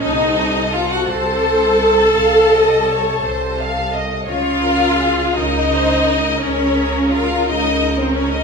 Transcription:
<<
  \new Staff \with { instrumentName = "Violin section" } { \time 12/8 \key bes \minor \tempo 4. = 57 ees''4 f''16 ges''16 a''1 r8 | f''4. ees''4. des''4 f''8 ees''8. c''16 des''16 ees''16 | }
  \new Staff \with { instrumentName = "Violin section" } { \time 12/8 \key bes \minor a'4. c''4. f''8 ees''8 des''8 c''8 f''8 ees''8 | des''8 bes'8 aes'8 bes'8 c''8 bes'2.~ bes'8 | }
  \new Staff \with { instrumentName = "Viola section" } { \time 12/8 \key bes \minor ees'4 f'16 ges'16 a'1 r8 | f'4. ees'4. des'4 f'8 ees'8. c'16 des'16 ees'16 | }
  \new Staff \with { instrumentName = "Cello section" } { \clef bass \time 12/8 \key bes \minor c4. c4. c4. c4. | des4. des4. des4. des4. | }
  \new Staff \with { instrumentName = "Double bass section" } { \clef bass \time 12/8 \key bes \minor c,4. c,4. c,4. c,4. | des,4. des,4. des,4. des,4. | }
>>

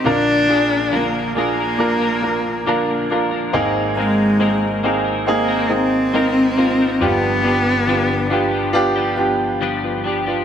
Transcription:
<<
  \new Staff \with { instrumentName = "Grand piano" } { \time 4/4 \key aes \lydian \tempo 4 = 69 <bes d' f' bes'>8 <bes d' f' aes'>8 <bes d' f' bes'>8 <bes d' f' aes'>8 <bes d' f' bes'>8 <bes d' f' bes'>8 <bes d' f' bes'>8 <bes d' f' bes'>8 | <bes c' ees' aes'>8 <bes c' ees' bes'>8 <bes c' ees' aes'>8 <bes c' ees' aes'>8 <bes c' ees' aes'>8 <bes c' ees' aes'>8 <bes c' ees' bes'>8 <bes c' ees' f'>8 | <b d' f' g'>8 <b d' f' g'>8 <b d' f' g'>8 <b d' f' g'>8 <b d' f' g'>8 <b d' f' g'>8 r16 <f' b'>16 <d' g'>16 <b f'>16 | }
  \new Staff \with { instrumentName = "Grand piano" } { \clef bass \time 4/4 \key aes \lydian <bes,, bes,>1 | <aes,, aes,>1 | <g,, g,>1 | }
  \new Staff \with { instrumentName = "Clean electric guitar" } { \time 4/4 \key aes \lydian <bes, d f bes d' bes'>8 <f bes d' bes'>8 <bes, d f bes d' bes'>8 <f bes d' bes'>16 <f bes d' bes'>8 <f bes d' bes'>8. <bes, d f bes d' bes'>8 <f bes d' bes'>16 <f bes d' bes'>16 | <aes c' ees' bes'>8 <aes c' ees' bes'>8 <aes c' ees' bes'>8 <aes c' ees' bes'>16 <c' ees' bes'>8 <c' ees' bes'>8. <aes c' ees' bes'>8 <aes c' ees' bes'>16 <c' ees' bes'>16 | <g, d f b d' g'>8 <f b d' g'>8 <g, d f b d' g'>8 <f b d' g'>16 <f b d' g'>8 <f b d' g'>8. <g, d f b d' g'>8 <f b d' g'>16 <f b d' g'>16 | }
  \new Staff \with { instrumentName = "Cello" } { \time 4/4 \key aes \lydian d'4 bes8 bes2 r8 | r8 aes4 r8 bes8 c'4. | b2 r2 | }
>>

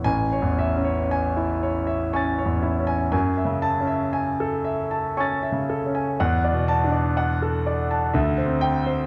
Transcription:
<<
  \new Staff \with { instrumentName = "Grand piano" } { \time 3/4 \key a \major \tempo 4 = 59 << { gis''8 r4. <cis''' a'''>4 | r8 a''8 r4 <cis''' a'''>4 | r8 a''8 r4. g''8 | } \\ { r16 cis''16 e''16 cis''16 gis''16 e'16 cis''16 e''16 gis''16 cis''16 e'16 gis''16 | gis''16 e''8 e''16 gis''16 a'16 e''16 a''16 gis''16 e''16 a'16 gis''16 | fis''16 d''8 d''16 fis''16 a'16 d''16 a''16 e''16 c''8 c''16 | } >> }
  \new Staff \with { instrumentName = "Grand piano" } { \clef bass \time 3/4 \key a \major \tuplet 3/2 { a,,8 e,8 cis'8 } r4 \tuplet 3/2 { cis'8 e,8 cis'8 } | \tuplet 3/2 { fis,8 cis8 cis'8 } r4 \tuplet 3/2 { cis'8 cis8 cis'8 } | \tuplet 3/2 { e,8 b,8 d'8 } r4 \tuplet 3/2 { d,8 c'4 } | }
>>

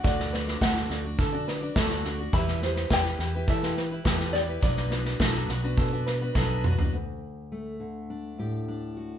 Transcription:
<<
  \new Staff \with { instrumentName = "Five-string banjo" } { \time 4/4 \key d \major \tempo 4 = 104 fis''4 fis''2 r4 | b''4 g''4 e''4 r8 d''8~ | d''2. r4 | r1 | }
  \new Staff \with { instrumentName = "Ukulele" } { \time 4/4 \key d \major d''8 b'8 a'8 fis'8 a'8 b'8 a'8 fis'8 | e''8 c''8 b'8 g'8 a'8 b'8 a'8 g'8 | d''8 b'8 a'8 fis'8 a'8 b'8 a'8 fis'8 | r1 | }
  \new Staff \with { instrumentName = "Steel-string acoustic guitar" } { \time 4/4 \key d \major <d a d' fis' d''>8 <a d' fis' d''>8 <d a d' fis' d''>8 <a d' fis' d''>16 <d' fis' d''>8 <d' fis' d''>8 <d' fis' d''>16 <d a d' fis' d''>8 <a d' fis' d''>16 <d' fis' d''>16 | <e g e' g' b'>8 <g e' g' b'>8 <e g e' g' b'>8 <g e' g' b'>16 <e' g' b'>8 <e' g' b'>8 <e' g' b'>16 <e g e' g' b'>8 <g e' g' b'>16 <e' g' b'>16 | <b, fis b d' fis' b'>8 <b d' fis' b'>8 <b, fis b d' fis' b'>8 <b d' fis' b'>16 <b d' fis' b'>8 <b d' fis' b'>8 <b d' fis' b'>16 <b, fis b d' fis' b'>8 <b d' fis' b'>16 <b d' fis' b'>16 | r1 | }
  \new Staff \with { instrumentName = "Steel-string acoustic guitar" } { \time 4/4 \key d \major << { r1 | r1 | r1 | r4 a4 d'8 g'8 d'8 fis'8 | } \\ { r1 | r1 | r1 | d,4. d4 a,4. | } >> }
  \new Staff \with { instrumentName = "Fingered electric bass" } { \clef bass \time 4/4 \key d \major d,4 d,8 d,8 d4 d,4 | e,4 e,8 e,8 e4 e,4 | b,,4 b,,8 b,,8 b,4 b,,4 | r1 | }
  \new DrumStaff \with { instrumentName = "Drums" } \drummode { \time 4/4 <bd sn>16 sn16 sn16 sn16 <bd sn>16 sn16 sn8 <bd sn>8 sn8 <bd sn>16 sn16 sn8 | <bd sn>16 sn16 sn16 sn16 <bd sn>16 sn16 sn8 <bd sn>16 sn16 sn8 <bd sn>16 sn16 sn8 | <bd sn>16 sn16 sn16 sn16 <bd sn>16 sn16 sn8 <bd sn>8 sn8 <bd sn>8 toml16 tomfh16 | r4 r4 r4 r4 | }
>>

